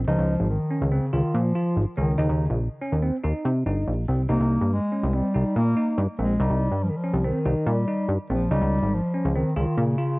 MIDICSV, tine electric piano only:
0, 0, Header, 1, 2, 480
1, 0, Start_track
1, 0, Tempo, 421644
1, 85, Time_signature, 5, 2, 24, 8
1, 11604, End_track
2, 0, Start_track
2, 0, Title_t, "Tine electric piano"
2, 0, Program_c, 0, 4
2, 86, Note_on_c, 0, 63, 96
2, 382, Note_off_c, 0, 63, 0
2, 804, Note_on_c, 0, 61, 59
2, 953, Note_off_c, 0, 61, 0
2, 1045, Note_on_c, 0, 60, 77
2, 1194, Note_off_c, 0, 60, 0
2, 1286, Note_on_c, 0, 65, 70
2, 1583, Note_off_c, 0, 65, 0
2, 1769, Note_on_c, 0, 65, 69
2, 2065, Note_off_c, 0, 65, 0
2, 2245, Note_on_c, 0, 61, 72
2, 2394, Note_off_c, 0, 61, 0
2, 2484, Note_on_c, 0, 63, 90
2, 2782, Note_off_c, 0, 63, 0
2, 3206, Note_on_c, 0, 61, 71
2, 3354, Note_off_c, 0, 61, 0
2, 3443, Note_on_c, 0, 60, 68
2, 3593, Note_off_c, 0, 60, 0
2, 3683, Note_on_c, 0, 63, 67
2, 3981, Note_off_c, 0, 63, 0
2, 4169, Note_on_c, 0, 63, 66
2, 4465, Note_off_c, 0, 63, 0
2, 4648, Note_on_c, 0, 60, 71
2, 4796, Note_off_c, 0, 60, 0
2, 4883, Note_on_c, 0, 63, 85
2, 5181, Note_off_c, 0, 63, 0
2, 5604, Note_on_c, 0, 61, 68
2, 5754, Note_off_c, 0, 61, 0
2, 5842, Note_on_c, 0, 60, 71
2, 5992, Note_off_c, 0, 60, 0
2, 6084, Note_on_c, 0, 63, 69
2, 6381, Note_off_c, 0, 63, 0
2, 6566, Note_on_c, 0, 63, 74
2, 6863, Note_off_c, 0, 63, 0
2, 7049, Note_on_c, 0, 60, 78
2, 7197, Note_off_c, 0, 60, 0
2, 7290, Note_on_c, 0, 63, 92
2, 7586, Note_off_c, 0, 63, 0
2, 8010, Note_on_c, 0, 61, 69
2, 8158, Note_off_c, 0, 61, 0
2, 8247, Note_on_c, 0, 60, 77
2, 8396, Note_off_c, 0, 60, 0
2, 8486, Note_on_c, 0, 63, 74
2, 8783, Note_off_c, 0, 63, 0
2, 8968, Note_on_c, 0, 63, 69
2, 9264, Note_off_c, 0, 63, 0
2, 9450, Note_on_c, 0, 60, 76
2, 9597, Note_off_c, 0, 60, 0
2, 9691, Note_on_c, 0, 63, 102
2, 9986, Note_off_c, 0, 63, 0
2, 10406, Note_on_c, 0, 61, 62
2, 10555, Note_off_c, 0, 61, 0
2, 10651, Note_on_c, 0, 60, 77
2, 10799, Note_off_c, 0, 60, 0
2, 10887, Note_on_c, 0, 65, 72
2, 11184, Note_off_c, 0, 65, 0
2, 11363, Note_on_c, 0, 65, 70
2, 11604, Note_off_c, 0, 65, 0
2, 11604, End_track
0, 0, End_of_file